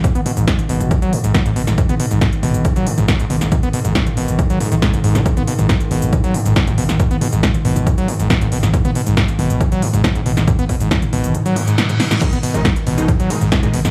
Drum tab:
CC |----------------|----------------|----------------|----------------|
RD |----------------|----------------|----------------|----------------|
HH |xxoxxxoxxxoxxxox|xxoxxxoxxxoxxxox|xxoxxxoxxxoxxxox|xxoxxxoxxxoxxxox|
SH |xx-xxx-xxx-xxx-x|xx-xxx-xxx-xxx-x|xx-xxx-xxx-xxx-x|xx-xxx-xxx-xxx-x|
SD |----o-------o--o|----o-------o--o|----o-------o--o|----o-------o--o|
T2 |o-o--o-o--o-o--o|-o--o-o--o-o--o-|o--o-o--o-o--o-o|-o-o--o-o--o-o--|
BD |o---o---o---o---|o---o---o---o---|o---o---o---o---|o---o---o---o---|

CC |----------------|----------------|----------------|x---------------|
RD |----------------|----------------|----------------|--x---x---x---x-|
HH |xxoxxxoxxxoxxxox|xxoxxxoxxxoxxxox|xxoxxxoxxxoxxxox|xxoxxxoxxxoxxxox|
SH |xx-xxx-xxx-xxx-x|xx-xxx-xxx-xxx-x|xx-xxx-xxx-xxx-x|xx-xxx-xxx-xxx-x|
SD |----o-------o--o|----o-------o--o|----o-------o-oo|----o-------o--o|
T2 |o-o--o-o--o-o--o|-o--o-o--o-o--o-|o--o-o--o-o--o-o|-o-o--o-o--o-o--|
BD |o---o---o---o---|o---o---o---o---|o-o-o-----------|o---o---o---o---|